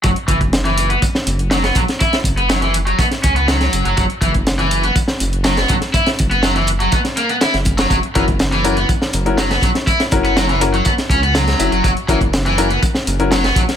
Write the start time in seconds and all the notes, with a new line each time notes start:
0.04 F#1 F#3, kick, closed hi-hat
0.16 closed hi-hat
0.28 F#1 E3, kick, closed hi-hat
0.41 kick, closed hi-hat
0.53 snare, closed hi-hat
0.65 E3, closed hi-hat
0.78 closed hi-hat
0.90 B3, closed hi-hat
1.02 kick, closed hi-hat
1.15 snare
1.27 F#1, closed hi-hat
1.39 closed hi-hat
1.51 F#3, snare, closed hi-hat
1.64 B3, snare, closed hi-hat
1.75 A#1 F#3, kick, closed hi-hat
1.88 snare, closed hi-hat
2.00 E4, kick, closed hi-hat
2.13 snare, closed hi-hat
2.24 F#1, kick, closed hi-hat
2.37 B3, closed hi-hat
2.49 F#3, snare, closed hi-hat
2.62 E3, closed hi-hat
2.74 closed hi-hat
2.87 F#3, closed hi-hat
2.99 B3, kick, closed hi-hat
3.11 snare, closed hi-hat
3.23 C#2 C#4, kick, closed hi-hat
3.36 B3, closed hi-hat
3.48 F#3, snare, closed hi-hat
3.61 snare, closed hi-hat
3.73 F#1, closed hi-hat
3.85 F#1 F#3, closed hi-hat
3.97 F#1 F#3, kick, closed hi-hat
4.10 closed hi-hat
4.21 F#1 E3, kick, closed hi-hat
4.34 kick, closed hi-hat
4.47 snare, closed hi-hat
4.59 E3, closed hi-hat
4.71 closed hi-hat
4.84 B3, closed hi-hat
4.96 kick, closed hi-hat
5.08 snare
5.20 F#1, closed hi-hat
5.33 closed hi-hat
5.44 F#3, snare, closed hi-hat
5.57 B3, snare, closed hi-hat
5.68 A#1 F#3, kick, closed hi-hat
5.81 snare, closed hi-hat
5.94 E4, kick, closed hi-hat
6.07 snare, closed hi-hat
6.19 F#1, kick, closed hi-hat
6.31 B3, closed hi-hat
6.43 F#3, snare, closed hi-hat
6.56 E3, closed hi-hat
6.67 closed hi-hat
6.80 F#3, closed hi-hat
6.92 B3, kick, closed hi-hat
7.04 snare, closed hi-hat
7.17 A#3, closed hi-hat
7.29 B3, closed hi-hat
7.41 E4, snare, closed hi-hat
7.54 F#1, snare, closed hi-hat
7.65 kick, closed hi-hat
7.78 F#3, snare, closed hi-hat
7.90 F#1 F#3, kick, closed hi-hat
8.03 closed hi-hat
8.15 F#1 E3 C#4 E4 F#4 A#4, kick, closed hi-hat
8.28 kick, closed hi-hat
8.39 snare, closed hi-hat
8.52 E3, closed hi-hat
8.64 C#4 E4 F#4 A#4, closed hi-hat
8.77 B3, closed hi-hat
8.89 kick, closed hi-hat
9.02 snare
9.13 F#1, closed hi-hat
9.26 C#4 E4 F#4 A#4, closed hi-hat
9.38 F#3, snare, closed hi-hat
9.51 B3, snare, closed hi-hat
9.62 A#1 F#3, kick, closed hi-hat
9.75 snare, closed hi-hat
9.87 E4, kick, closed hi-hat
10.00 snare, closed hi-hat
10.11 F#1 C#4 E4 F#4 A#4, kick, closed hi-hat
10.25 B3, closed hi-hat
10.37 F#3, snare, closed hi-hat
10.49 E3, closed hi-hat
10.61 C#4 E4 F#4 A#4, closed hi-hat
10.74 F#3, closed hi-hat
10.85 B3, kick, closed hi-hat
10.98 snare, closed hi-hat
11.10 C#2 C#4, kick, closed hi-hat
11.23 B3, closed hi-hat
11.35 F#3, snare, closed hi-hat
11.48 snare, closed hi-hat
11.59 F#1 C#4 E4 F#4 E5, closed hi-hat
11.72 F#1 F#3, closed hi-hat
11.84 F#1 F#3, kick, closed hi-hat
11.97 closed hi-hat
12.08 F#1 E3 C#4 E4 F#4 A#4, kick, closed hi-hat
12.21 kick, closed hi-hat
12.33 snare, closed hi-hat
12.46 E3, closed hi-hat
12.58 C#4 E4 F#4 A#4, closed hi-hat
12.70 B3, closed hi-hat
12.83 kick, closed hi-hat
12.95 snare
13.07 F#1, closed hi-hat
13.20 C#4 E4 F#4 A#4, closed hi-hat
13.31 F#3, snare, closed hi-hat
13.44 B3, snare, closed hi-hat
13.56 A#1 F#3, kick, closed hi-hat
13.69 snare, closed hi-hat